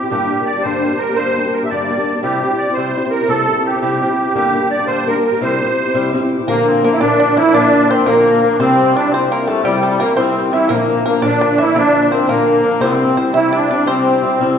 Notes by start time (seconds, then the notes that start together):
0.03 C4 E4 G4
0.10 G2 D3 G3 A#3 D4 G4
0.30 G3 A#3 D4 G4
0.39 G3 A#3 D4 G4
0.46 D5
0.56 G3 A#3 D4 G4
0.62 G2 D3 G3 A#3 D4 G4 C5
0.84 G3 A#3 D4 G4
0.92 G3 A#3 D4 G4
0.98 A#4
1.09 G3 A#3 D4 G4
1.15 G2 D3 G3 A#3 D4 G4 C5
1.37 G3 A#3 D4 G4
1.45 G3 A#3 D4 G4
1.53 A#4
1.62 G3 A#3 D4 G4 E5
1.70 G2 D3 G3 A#3 D4 G4 D5
1.90 G3 A#3 D4 G4
1.97 G3 A#3 D4 G4
2.14 G3 A#3 D4 G4
2.23 C3 G3 C4 E4 G4
2.42 G3 C4 E4 G4
2.51 C4 E4 G4
2.58 D5
2.67 C4 E4 G4
2.73 C3 G3 C4 C5
2.78 E4 G4
2.96 G3 C4 E4 G4
3.05 C4 E4 G4
3.11 A#4
3.21 C4 E4 G4
3.28 C3 G3 C4 E4 G4 A4
3.48 G3 C4 E4 G4
3.56 C4 E4 G4
3.66 G4
3.73 C4 E4 G4
3.81 C3 G3 C4 E4 G4
4.01 G3 C4 E4 G4
4.09 C4 E4 G4
4.25 C4 E4 G4
4.34 G2 D3 G3 A#3 D4 G4
4.53 G3 A#3 D4 G4
4.61 G3 A#3 D4 G4
4.71 D5
4.78 G3 A#3 D4 G4
4.86 G2 D3 G3 A#3 D4 G4 C5
5.06 G3 A#3 D4 G4 A#4
5.15 G3 A#3 D4 G4
5.25 A#4
5.32 G3 A#3 D4 G4
5.41 C3 G3 C4 E4 G4 C5
5.59 G3 C4 E4 G4
5.68 C4 E4 G4
5.84 C4 E4 G4
5.94 C3 G3 C4 E4 G4
6.13 G3 C4 E4 G4
6.21 C4 E4 G4
6.38 C4 E4 G4
6.47 A#2 D3 F3 A#3 D4 A#4
6.68 C4
6.83 F3 A#3 D4 A#4
6.93 E4
7.00 A#2 D3 F3 A#3 D4 A#4 D5
7.20 D5
7.36 E3 F3 A#3 D4 E4 A#4 E5
7.52 A#2 D3 F3 A#3 D4 A#4 D5
7.89 F3 A#3 C4 D4 A#4 C5
8.06 A#2 D3 F3 A#3 D4 A#4
8.41 F3 A#3 D4 A#4
8.54 D4
8.59 C3 G3 C4 E4 G4 C5
8.94 G3 C4 D4 E4 G4 D5
9.11 C3 G3 C4 E4 G4 C5
9.30 A#3 A#4
9.47 G3 A3 C4 E4 G4 A4
9.63 C3 G3 C4 E4 G4
9.77 G3
9.83 A4
9.89 G3
9.99 G3 A#3 C4 E4 G4 A#4
10.16 C3 G3 C4 E4 G4 C5
10.51 E3 G3 C4 E4 G4 E5
10.69 A#2 D3 F3 A#3 D4 A#4
11.05 F3 A#3 D4 A#4
11.21 A#2 D3 F3 A#3 D4 A#4 D5
11.41 D5
11.58 E3 F3 A#3 D4 E4 A#4 E5
11.75 A#2 D3 F3 A#3 D4 A#4 D5
12.11 F3 A#3 C4 D4 A#4 C5
12.27 A#2 D3 F3 A#3 D4 A#4
12.63 F3 A#3 D4 A#4
12.80 C3 G3 C4 E4 G4 C5
13.16 G3 C4 E4 G4 C5
13.34 C3 E3 G3 C4 E4 G4 E5
13.53 D4 D5
13.70 G3 C4 D4 E4 G4 D5
13.86 C3 G3 C4 E4 G4 C5
14.22 G3 C4 E4 G4
14.39 C3 G3 C4 E4 G4